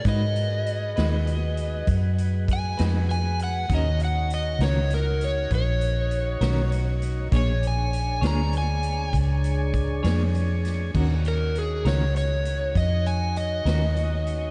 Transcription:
<<
  \new Staff \with { instrumentName = "Electric slide guitar" } { \time 12/8 \key ees \minor \tempo 4. = 66 ees''2. r4 aes''8 r8 aes''8 ges''8 | ees''8 ges''8 ees''8 des''8 bes'8 des''8 des''2 r4 | cis''8 aes''4 bes''8 aes''4 r2. | r8 bes'8 aes'8 des''8 des''4 ees''8 aes''8 ees''2 | }
  \new Staff \with { instrumentName = "Tonewheel organ" } { \time 12/8 \key ees \minor <ges' aes' ces''>1. | <ees' ges' des''>1. | <d' aes' cis''>1. | <ees' ges' des''>1. | }
  \new Staff \with { instrumentName = "Clean electric guitar" } { \time 12/8 \key ees \minor <aes ees' ges' ces''>8 r4 <aes ees' ges' ces''>8 r2 r8 <aes ees' ges' ces''>8 r4 | <ees des' ges' bes'>8 r4 <ees des' ges' bes'>8 r2 r8 <ees des' ges' bes'>8 r4 | <bes d' aes' cis''>8 r4 <bes d' aes' cis''>8 r2 r8 <bes d' aes' cis''>8 r4 | <ees des' ges' bes'>8 r4 <ees des' ges' bes'>8 r2 r8 <ees des' ges' bes'>8 r4 | }
  \new Staff \with { instrumentName = "Fingered electric bass" } { \clef bass \time 12/8 \key ees \minor aes,4. ees,4. ges,4. f,4. | ees,4. des,4. bes,,4. ces,4. | bes,,4. d,4. cis,4. f,4. | ees,4. des,4. f,4. ees,4. | }
  \new DrumStaff \with { instrumentName = "Drums" } \drummode { \time 12/8 <hh bd>8 hh8 hh8 <hh sn>8 hh8 hh8 <hh bd>8 hh8 <hh bd>8 <hh sn>8 hh8 hh8 | <hh bd>8 hh8 hh8 <hh sn>8 hh8 hh8 <hh bd>8 hh8 hh8 <hh sn>8 hh8 hh8 | <hh bd>8 hh8 hh8 <hh sn>8 hh8 hh8 <hh bd>8 hh8 <hh bd>8 <hh sn>8 hh8 <hh sn>8 | <cymc bd>8 hh8 hh8 <hh sn>8 hh8 hh8 <hh bd>8 hh8 hh8 <hh sn>8 hh8 hh8 | }
>>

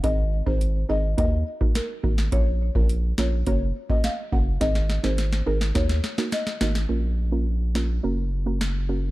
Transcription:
<<
  \new Staff \with { instrumentName = "Marimba" } { \time 4/4 \key bes \minor \tempo 4 = 105 ees''16 r8 c''8 r16 ees''8 ees''8. r16 bes'8. r16 | des''16 r8 bes'8 r16 des''8 des''16 r8 ees''16 f''16 r16 ges''16 r16 | ees''16 r8 c''8 r16 bes'8 des''8. r16 ees''8. r16 | r1 | }
  \new Staff \with { instrumentName = "Synth pluck" } { \time 4/4 \key bes \minor <c' ees' aes' bes'>8. <c' ees' aes' bes'>16 r8 <c' ees' aes' bes'>16 r16 <bes ees' ges' bes'>16 r8 <bes ees' ges' bes'>16 r8 <bes ees' ges' bes'>16 r16 | <bes des' f' bes'>8. <bes des' f' bes'>16 r8 <bes des' f' bes'>16 r16 <bes des' ges' bes'>16 r8 <bes des' ges' bes'>16 r8 <bes des' ges' bes'>16 r16 | <c' ees' aes' bes'>8. <c' ees' aes' bes'>16 r8 <c' ees' aes' bes'>16 r16 <bes ees' ges' bes'>16 r8 <bes ees' ges' bes'>16 r8 <bes ees' ges' bes'>16 r16 | <bes des' f' bes'>8. <bes des' f' bes'>16 r8 <bes des' f' bes'>16 r16 <bes des' ges' bes'>16 r8 <bes des' ges' bes'>16 r8 <bes des' ges' bes'>16 r16 | }
  \new Staff \with { instrumentName = "Sub bass" } { \clef bass \time 4/4 \key bes \minor aes,,8. aes,,8. aes,,8 ees,8 r4 aes,,8 | bes,,8. bes,,8. bes,,8 ges,,8 r4 ges,,8 | aes,,8. aes,,8. aes,,8 ees,8 r4 aes,,8 | bes,,2 ges,,2 | }
  \new DrumStaff \with { instrumentName = "Drums" } \drummode { \time 4/4 <hh bd>8. bd16 hh4 <hh bd>8. bd16 <hh sn>8 bd16 sn16 | <hh bd>8. bd16 hh8 sn8 <hh bd>8. bd16 <hh sn>8 bd8 | <hh bd sn>16 sn16 sn16 sn16 <hh sn>16 sn8 sn16 <hh bd sn>16 sn16 sn16 sn16 <hh sn>16 sn16 sn16 sn16 | r4 r8 sn8 r4 sn4 | }
>>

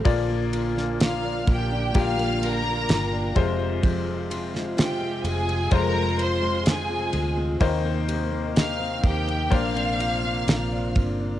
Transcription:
<<
  \new Staff \with { instrumentName = "Violin section" } { \time 4/4 \key bes \major \tempo 4 = 63 r4 <f'' f'''>8 <g' g''>8 <f'' f'''>8 <bes' bes''>4 r8 | r4 <g' g''>8 <aes' aes''>8 <bes' bes''>8 <c'' c'''>8 <aes' aes''>8. r16 | r4 <f'' f'''>8 <g' g''>8 <f'' f'''>4. r8 | }
  \new Staff \with { instrumentName = "Upright piano" } { \time 4/4 \key bes \major <bes f' d''>2 <bes f' g'>4. <aes f' c''>8~ | <aes f' c''>4. r8 <aes f' c''>2 | <bes ees' c''>2 <bes d' c''>2 | }
  \new Staff \with { instrumentName = "Upright piano" } { \clef bass \time 4/4 \key bes \major <bes, f>4. r2 c8~ | c4 r2. | ees4. r2 r8 | }
  \new Staff \with { instrumentName = "Steel-string acoustic guitar" } { \time 4/4 \key bes \major bes,16 bes16 f'16 bes16 f'16 d'16 bes16 d'16 bes,16 bes16 f'16 bes16 f'16 d'16 f,16 c'16 | f,16 aes16 f'16 aes16 f'16 c'16 aes16 c'16 f,16 aes16 f'16 aes16 f'16 c'16 aes16 c'16 | ees16 bes16 g'16 bes16 g'16 c'16 bes16 c'16 bes,16 c'16 f'16 c'16 f'16 d'16 c'16 d'16 | }
  \new Staff \with { instrumentName = "Tonewheel organ" } { \time 4/4 \key bes \major f'1~ | f'1 | ees'2 d'2 | }
  \new Staff \with { instrumentName = "Tonewheel organ" } { \clef bass \time 4/4 \key bes \major << { bes2.~ bes8 aes8~ | aes1 | bes1 | } \\ { d2.~ d8 c8~ | c1~ | c1 | } >> }
  \new Staff \with { instrumentName = "Fingered electric bass" } { \clef bass \time 4/4 \key bes \major bes,,4. bes,,8 bes,,4 g,,8 f,,8~ | f,,4. f,,8 f,,4. d,8 | ees,4. ees,8 bes,,4 bes,,8 g,,8 | }
  \new DrumStaff \with { instrumentName = "Drums" } \drummode { \time 4/4 <bd cymr>8 cymr16 sn16 <cymr sn>8 <bd cymr>8 <bd cymr>16 cymr16 cymr8 <cymr sn>8 <bd cymr>8 | <bd cymr>8 cymr16 sn16 <cymr sn>8 cymr16 cymr16 <bd cymr>8 cymr8 <cymr sn>8 cymr8 | <bd cymr>8 cymr8 <cymr sn>8 <bd cymr>16 cymr16 <bd cymr>16 cymr16 cymr8 <cymr sn>8 <bd cymr>8 | }
>>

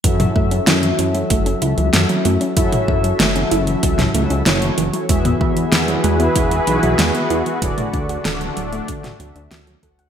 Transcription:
<<
  \new Staff \with { instrumentName = "Analog polysynth" } { \time 4/4 \key fis \minor \tempo 4 = 95 <fis cis' e' fis' a' e''>2. <fis cis' e' fis' a' e''>4 | <fis cis' e' fis' a' e''>2~ <fis cis' e' fis' a' e''>8 <fis cis' e' fis' a' e''>8 <fis cis' e' fis' a' cis''>4 | <e b e' fis' gis' e''>2. <e gis'>4 | <d fis' a' d''>2~ <d fis' a' d''>8 <d fis' a' e''>4 <d fis' a' fis''>8 | }
  \new Staff \with { instrumentName = "Analog synth pad" } { \time 4/4 \key fis \minor r1 | r1 | <e e' fis' gis' b'>1 | <a d'>1 | }
  \new Staff \with { instrumentName = "Synth arpeggio sound" } { \clef bass \time 4/4 \key fis \minor e16 fis16 a16 cis'16 e'16 e16 e16 fis16 a16 cis'16 e'16 e16 e16 fis16 a16 cis'16 | e'16 e16 e16 fis16 a16 cis'16 e'16 e16 e16 fis16 a16 cis'16 e'16 e16 e16 fis16 | gis16 b16 e'16 e16 e16 fis16 gis16 b16 e'16 e16 e16 fis16 gis16 b16 e'16 e16 | fis16 a16 d'16 fis'16 a'16 fis16 fis16 a16 d'16 fis'16 fis16 d'16 fis'16 fis16 a'16 fis''16 | }
  \new Staff \with { instrumentName = "Analog synth bass" } { \clef bass \time 4/4 \key fis \minor fis,8 fis,8 fis,8 fis,8 fis,,8 cis,16 cis,16 fis,16 r16 fis,16 r16 | fis,,16 r16 fis,8 fis,,8 fis,,8 cis,8 cis,16 cis,16 fis,,8 fis,,16 r16 | e,8 e,8 e,8 e,8 e,,8 b,,16 b,,16 e,16 r16 e,16 r16 | d,,16 r16 d,8 d,,8 d,,8 d,8 d,16 d,16 d,8 d,8 | }
  \new DrumStaff \with { instrumentName = "Drums" } \drummode { \time 4/4 <hh bd>16 <hh toml>16 bd16 hh16 <hh sn>16 hh16 hh16 hh16 <hh bd>16 hh16 hh16 hh16 <hh sn>16 hh16 hh16 hh16 | <hh bd>16 <hh toml>16 bd16 hh16 <hh sn>16 hh16 hh16 hh16 <hh bd>16 <hh sn toml>16 hh16 hh16 <hh sn>16 hh16 hh16 hh16 | <hh bd>16 <hh toml>16 bd16 hh16 <hh sn>16 hh16 hh16 hh16 <hh bd>16 hh16 hh16 hh16 <hh sn>16 hh16 hh16 hh16 | <hh bd>16 <hh toml>16 <hh bd>16 hh16 <hh sn>16 hh16 hh16 hh16 <hh bd>16 <hh sn toml>16 hh16 hh16 <hh sn>16 hh16 <hh bd>16 hh16 | }
>>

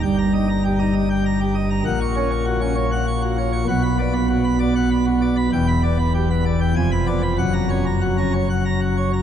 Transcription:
<<
  \new Staff \with { instrumentName = "Pipe organ" } { \time 3/4 \key ees \lydian \tempo 4 = 98 g''16 bes''16 ees''16 bes''16 g'16 bes''16 ees''16 g''16 bes''16 g'16 ees''16 bes''16 | \key fis \phrygian fis''16 cis'''16 cis''16 cis'''16 fis'16 cis'''16 cis''16 fis''16 cis'''16 fis'16 cis''16 cis'''16 | fis''16 b''16 d''16 b''16 fis'16 b''16 d''16 fis''16 b''16 fis'16 d''16 b''16 | g''16 b''16 d''16 b''16 g'16 b''16 d''16 g''16 aes''16 ces'''16 d''16 ces'''16 |
fis''16 ais''16 cis''16 ais''16 fis'16 ais''16 cis''16 fis''16 ais''16 fis'16 cis''16 ais''16 | }
  \new Staff \with { instrumentName = "Pipe organ" } { \clef bass \time 3/4 \key ees \lydian << { g,8 ees'16 r8 ees'16 r4. | \key fis \phrygian ais,8 cis'16 r8 cis'16 r4. | b,8 b16 r8 b16 r4. | e,8 b16 r8 b16 r8 f,8 ces'16 r16 |
fis,8 cis'16 r8 cis'16 r4. | } \\ { g,,2. | ais,,2. | b,,2. | e,,2 f,,4 |
fis,,2. | } >> }
>>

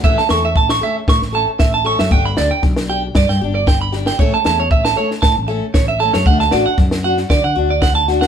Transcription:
<<
  \new Staff \with { instrumentName = "Clean electric guitar" } { \time 4/4 \key a \mixolydian \tempo 4 = 116 e''16 a''16 cis'''16 e''16 a''16 cis'''16 e''16 r16 cis'''16 r16 a''16 r16 e''16 a''16 cis'''16 e''16 | g''16 b''16 d''16 g''16 r8 g''16 r16 d''16 g''16 r16 d''16 g''16 b''16 r16 g''16 | cis''16 a''16 a''16 cis''16 e''16 a''16 cis''16 r16 a''16 r8. cis''16 e''16 a''16 cis''16 | fis''16 a''16 d''16 fis''16 r8 fis''16 r16 d''16 fis''16 r16 d''16 fis''16 a''16 r16 fis''16 | }
  \new Staff \with { instrumentName = "Steel-string acoustic guitar" } { \time 4/4 \key a \mixolydian <e a cis' a'>8 <a cis' a'>8 r8 <a cis' a'>8 r8 <a cis' a'>8 r8 <a cis' a'>8 | <b d' g'>8 d'8 r8 <d' g'>8 r8 <d' g'>8 r8 <d' g'>8 | <e a cis' a'>8 <a cis'>8 r8 <a cis' a'>8 r8 <a cis' a'>8 r8 <a cis' a'>8 | <a d' fis'>8 <d' fis'>8 r8 <d' fis'>8 r8 <d' fis'>8 r8 <d' fis'>8 | }
  \new Staff \with { instrumentName = "Fretless electric bass" } { \clef bass \time 4/4 \key a \mixolydian a,,16 r16 e,8 a,,8 r8 a,16 a,,8 r16 a,,8. fis,16 | g,,8 d,16 r16 b,,4 g,16 g,16 g,,4. | a,,16 r16 e,8 a,,8 r8 a,16 a,,8 r16 a,,8. fis,16 | d,8 a,,16 r16 fis,4 d16 d16 d,4. | }
  \new DrumStaff \with { instrumentName = "Drums" } \drummode { \time 4/4 bd16 sn16 sn8 bd16 sn8. <bd sn>16 sn8. <bd sn>8. sn16 | bd8 sn8 <bd sn>16 sn8. <bd sn>16 sn8. <bd sn>8 sn16 sn16 | bd8 sn8 bd16 sn8 sn16 <bd sn>4 <bd sn>8. sn16 | bd16 sn16 sn8 <bd sn>16 sn8 sn16 <bd sn>4 <bd sn>8 sn16 sn16 | }
>>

